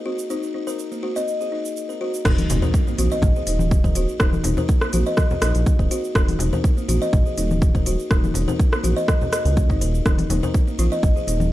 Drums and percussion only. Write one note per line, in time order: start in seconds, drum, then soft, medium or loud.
0.19 shaker medium
0.30 shaker medium
0.43 shaker soft
0.68 shaker medium
0.79 shaker medium
0.92 shaker soft
1.16 shaker medium
1.28 shaker medium
1.41 shaker soft
1.65 shaker medium
1.77 shaker medium
1.90 shaker soft
2.14 shaker medium
2.25 kick loud
2.25 cross-stick medium
2.25 crash loud
2.25 shaker medium
2.38 open hi-hat medium
2.38 high conga loud
2.38 shaker soft
2.50 open hi-hat loud
2.50 low conga loud
2.50 shaker medium
2.62 high conga medium
2.62 low conga loud
2.62 shaker soft
2.74 kick loud
2.74 shaker medium
2.87 shaker soft
2.98 open hi-hat medium
2.98 high conga medium
2.98 shaker medium
3.11 shaker soft
3.22 kick loud
3.22 high conga medium
3.22 low conga loud
3.22 shaker medium
3.36 shaker soft
3.47 open hi-hat medium
3.47 shaker medium
3.59 high conga loud
3.59 shaker soft
3.71 kick loud
3.71 shaker medium
3.84 kick medium
3.84 high conga medium
3.84 shaker soft
3.95 open hi-hat medium
3.95 shaker medium
4.09 shaker soft
4.20 kick loud
4.20 cross-stick loud
4.20 shaker medium
4.33 high conga loud
4.33 shaker soft
4.44 open hi-hat medium
4.44 low conga loud
4.44 shaker medium
4.57 high conga medium
4.57 low conga loud
4.57 shaker soft
4.69 kick loud
4.69 shaker medium
4.81 cross-stick medium
4.81 shaker soft
4.93 open hi-hat loud
4.93 high conga medium
4.93 shaker loud
5.06 shaker soft
5.17 kick loud
5.17 cross-stick medium
5.17 high conga medium
5.17 shaker medium
5.30 low conga medium
5.30 shaker soft
5.42 cross-stick loud
5.42 open hi-hat medium
5.42 shaker loud
5.55 open hi-hat medium
5.55 shaker soft
5.66 kick loud
5.66 high conga medium
5.66 shaker medium
5.79 kick medium
5.79 shaker soft
5.91 open hi-hat medium
5.91 shaker medium
6.04 shaker soft
6.15 kick loud
6.15 cross-stick loud
6.15 shaker medium
6.28 open hi-hat medium
6.28 high conga loud
6.28 shaker soft
6.39 open hi-hat medium
6.39 low conga loud
6.39 shaker loud
6.53 high conga medium
6.53 low conga loud
6.53 shaker soft
6.64 kick loud
6.64 shaker medium
6.78 shaker soft
6.89 open hi-hat medium
6.89 high conga medium
6.89 shaker loud
7.02 shaker soft
7.13 kick loud
7.13 high conga medium
7.13 low conga medium
7.13 shaker medium
7.26 shaker soft
7.38 open hi-hat medium
7.38 shaker loud
7.51 high conga loud
7.51 shaker soft
7.62 kick loud
7.62 shaker medium
7.75 kick medium
7.75 high conga medium
7.75 shaker soft
7.86 open hi-hat medium
7.86 shaker loud
7.99 shaker soft
8.11 kick loud
8.11 cross-stick medium
8.11 shaker medium
8.24 high conga loud
8.24 shaker soft
8.34 open hi-hat medium
8.34 low conga loud
8.34 shaker loud
8.48 high conga medium
8.48 low conga medium
8.48 shaker soft
8.60 kick loud
8.60 shaker medium
8.73 cross-stick medium
8.73 shaker soft
8.83 open hi-hat medium
8.83 high conga medium
8.83 shaker loud
8.97 shaker soft
9.08 kick loud
9.08 cross-stick medium
9.08 high conga medium
9.08 shaker medium
9.21 low conga medium
9.21 shaker soft
9.33 cross-stick medium
9.33 open hi-hat medium
9.33 shaker loud
9.45 open hi-hat medium
9.45 shaker soft
9.57 kick loud
9.57 high conga medium
9.57 shaker medium
9.70 kick medium
9.70 shaker soft
9.81 open hi-hat medium
9.81 shaker medium
9.94 shaker soft
10.06 kick loud
10.06 cross-stick medium
10.06 shaker medium
10.18 open hi-hat medium
10.18 high conga loud
10.18 shaker soft
10.30 open hi-hat medium
10.30 low conga loud
10.30 shaker medium
10.43 high conga medium
10.43 low conga medium
10.43 shaker soft
10.54 kick loud
10.54 shaker medium
10.68 shaker soft
10.79 open hi-hat medium
10.79 high conga medium
10.79 shaker medium
10.92 shaker soft
11.03 kick loud
11.03 high conga medium
11.03 low conga medium
11.03 shaker medium
11.17 shaker soft
11.28 open hi-hat medium
11.28 shaker medium
11.40 high conga loud
11.40 shaker soft